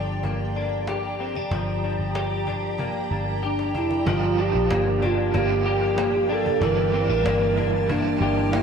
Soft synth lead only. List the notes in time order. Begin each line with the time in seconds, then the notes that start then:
3.45 D4
3.77 E4
4.09 F4
4.41 G4
5.05 F4
5.37 G4
6.32 A4
6.64 A#4
7.91 D4
8.55 E4